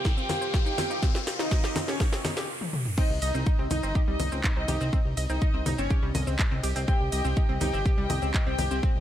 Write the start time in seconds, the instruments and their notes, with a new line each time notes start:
Already playing: synth drone C3 C4, string section C4 F4 A#4 F5, riser
0.05 synth arpeggio sound D#4, kick, snare, shaker
0.17 synth arpeggio sound C4, supersaw synth G4, violin section G5, shaker
0.29 synth arpeggio sound C4, snare, open hi-hat, low conga, shaker
0.41 synth arpeggio sound C5, shaker
0.53 synth arpeggio sound C4, kick, snare, shaker
0.66 synth arpeggio sound D#4, supersaw synth G4, violin section G5, shaker
0.78 synth arpeggio sound C4, snare, open hi-hat, low conga, shaker
0.90 synth arpeggio sound D#4, shaker
1.02 synth arpeggio sound C4, kick, snare, shaker
1.15 synth arpeggio sound C4, snare, shaker
1.27 synth arpeggio sound C4, snare, open hi-hat, shaker
1.39 supersaw synth D#4, synth arpeggio sound D#4, violin section D#5, snare, shaker
1.51 synth arpeggio sound C4, kick, snare, shaker
1.64 synth arpeggio sound G4, snare, shaker
1.76 synth arpeggio sound C4, snare, open hi-hat, low conga
1.88 supersaw synth C#4, synth arpeggio sound G4, violin section C#5, snare, shaker
2.00 synth arpeggio sound D#4, kick, snare, shaker
2.12 synth arpeggio sound C4, snare, shaker
2.24 synth arpeggio sound D#4, snare, open hi-hat, low conga, shaker
2.37 synth arpeggio sound G4, snare, shaker
2.61 high tom
2.73 mid tom
2.86 mid tom
2.98 synth drone C3 C4, synth arpeggio sound C4 C5, supersaw synth D#4, violin section D#5, kick, crash, shaker
3.10 analog synth bass C2
3.22 analog synth bass C2, supersaw synth D#4, violin section D#5, synth arpeggio sound D#5 D#6, open hi-hat, ride, shaker
3.34 analog synth bass C2, synth arpeggio sound C4 C5, shaker
3.46 synth arpeggio sound D#4 D#5, kick, shaker
3.59 analog synth bass C2, synth arpeggio sound C4 C5
3.66 string section D#5
3.71 analog synth bass C2, supersaw synth D#4, synth arpeggio sound D#4 D#5, violin section D#5, open hi-hat, ride, low conga, shaker
3.83 analog synth bass G1, synth arpeggio sound C4 C5, shaker
3.95 synth arpeggio sound G4 G5, kick, shaker
4.07 analog synth bass C2, synth arpeggio sound G3 G4, supersaw synth D#4, violin section D#5
4.20 analog synth bass C2, synth arpeggio sound D#5 D#6, open hi-hat, ride, low conga, shaker
4.32 analog synth bass C#2, synth arpeggio sound C4 C5, shaker
4.44 synth arpeggio sound D#4 D#5, kick, clap, shaker
4.56 analog synth bass C2, synth arpeggio sound C4 C5, supersaw synth D#4, violin section D#5
4.68 analog synth bass C2, synth arpeggio sound G4 G5, open hi-hat, ride, low conga, shaker
4.81 analog synth bass C2, synth arpeggio sound C4 C5, shaker
4.93 synth arpeggio sound C4 C5, kick, shaker
5.05 analog synth bass C2
5.17 analog synth bass C2, synth arpeggio sound D#5 D#6, open hi-hat, ride, shaker
5.29 analog synth bass C2, synth arpeggio sound C4 C5, supersaw synth D#4, violin section D#5, shaker
5.42 synth arpeggio sound D#4 D#5, kick, shaker
5.54 analog synth bass C2, synth arpeggio sound C4 C5
5.66 analog synth bass C2, synth arpeggio sound D#4 D#5, open hi-hat, ride, low conga, shaker
5.78 analog synth bass G1, synth arpeggio sound C4 C5, supersaw synth C#4, violin section C#5, shaker
5.90 synth arpeggio sound G4 G5, kick, shaker
6.03 analog synth bass C2, synth arpeggio sound G3 G4
6.15 analog synth bass C2, synth arpeggio sound D#5 D#6, open hi-hat, ride, low conga, shaker
6.27 analog synth bass C#2, synth arpeggio sound C4 C5, shaker
6.39 synth arpeggio sound D#4 D#5, kick, clap, shaker
6.51 analog synth bass C2, synth arpeggio sound C4 C5
6.63 analog synth bass C2, synth arpeggio sound G4 G5, open hi-hat, ride, shaker
6.76 analog synth bass C2, synth arpeggio sound C4 C5, open hi-hat, shaker
6.88 synth arpeggio sound C4 C5, supersaw synth G4, violin section G5, kick, shaker
7.01 analog synth bass C2
7.12 analog synth bass C2, supersaw synth G4, synth arpeggio sound D#5 D#6, violin section G5, open hi-hat, ride, shaker
7.25 analog synth bass C2, synth arpeggio sound C4 C5, shaker
7.37 synth arpeggio sound D#4 D#5, kick, shaker
7.49 analog synth bass C2, synth arpeggio sound C4 C5
7.61 analog synth bass C2, synth arpeggio sound D#4 D#5, supersaw synth G4, violin section G5, open hi-hat, ride, low conga, shaker
7.73 analog synth bass G1, synth arpeggio sound C4 C5, shaker
7.85 synth arpeggio sound G4 G5, kick, shaker
7.98 analog synth bass C2, synth arpeggio sound G3 G4, supersaw synth G4, violin section G5
8.10 analog synth bass C2, synth arpeggio sound D#5 D#6, open hi-hat, ride, low conga, shaker
8.22 analog synth bass C#2, synth arpeggio sound C4 C5, shaker
8.34 synth arpeggio sound D#4 D#5, kick, clap, shaker
8.47 analog synth bass C2, synth arpeggio sound C4 C5, supersaw synth G4, violin section G5
8.59 analog synth bass C2, synth arpeggio sound G4 G5, open hi-hat, ride, low conga, shaker
8.71 analog synth bass C2, synth arpeggio sound C4 C5, shaker
8.83 synth arpeggio sound C4 C5, kick, shaker
8.96 analog synth bass C2